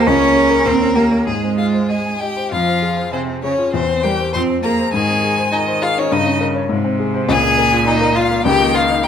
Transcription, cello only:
0.07 C#4
0.66 C4
0.96 A#3
1.27 G#3
2.53 F3
3.12 C3
3.44 C#3
3.74 C3
4.04 G3
4.34 C4
4.64 A#3
4.94 D#3
5.52 D#3
6.12 C#3
6.71 C3
7.30 A#2
8.45 D#3
9.04 D#3

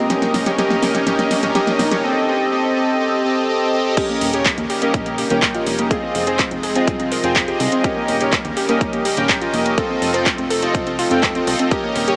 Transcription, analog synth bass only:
Already playing: D#1
0.34 D#1
0.71 D#2
1.07 A#1
1.43 D#1
1.79 F1
4.21 D#1
4.58 D#2
4.94 A#1
5.30 D#1
5.67 F1
6.15 F1
6.51 F1
6.87 C2
7.24 F1
7.60 C2
8.09 D#1
8.45 D#2
8.81 A#1
9.17 D#1
9.54 F1
10.02 F1
10.38 F1
10.75 C2
11.11 F1
11.47 C2
11.96 D#1

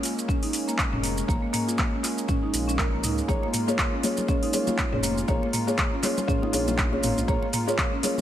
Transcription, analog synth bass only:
0.92 F1
1.29 A#1
2.53 A#1
2.79 A#1
3.03 C#2
3.29 A#1
4.93 F1
5.28 A#1
6.53 A#1
7.03 G#1
7.18 A#1
7.28 A#1

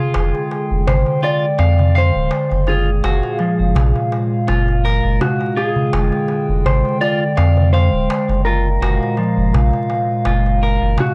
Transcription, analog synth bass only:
0.15 F1
0.71 F1
0.87 G#1
1.59 F2
2.15 D1
2.51 F#1
3.04 F#1
3.59 F#1
3.76 A#1
4.49 F#1
5.04 F#1
5.93 F1
6.49 F1
6.65 G#1
7.38 F2
7.93 D1
8.29 F#1
8.81 F#1
9.37 F#1
9.54 A#1
10.26 F#1
10.82 F#1

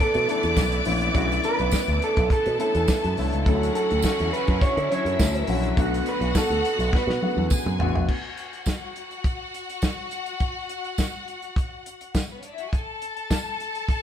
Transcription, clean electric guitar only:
0.01 A4
0.31 A4
1.16 F#4
1.45 B4
2.04 A4
2.32 A4
2.61 A4
3.46 A4
3.75 A4
4.33 B4
4.62 C#5
4.92 C#5
5.82 F#4
6.09 B4
6.37 A4
6.95 B4

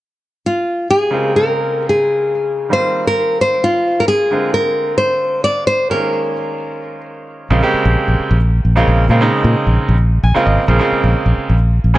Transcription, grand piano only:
1.10 C#3 G#3 A#3 C4 F4
2.69 D#3 G3 A#3 C4 F4
4.31 D3 G#3 A#3 C4 F4
5.90 D#3 G#3 A#3 C#4 F4
7.50 C#3 G#3 A#3 C4 F4
7.63 C#3 G#3 A#3 C4 G4
8.76 C#3 G#3 A#3 C4 F4
9.10 C#3 G#3 A#3 C4 F4
9.21 C#3 G#3 A#3 C4 D#4
10.24 G#5
10.34 C#3 G#3 A#3 C4 F4
10.46 D#5
10.68 C#3 G#3 A#3 C4 F4
10.79 C#3 G#3 A#3 C4 F4
11.94 C#3 G#3 A#3 C4 G#4

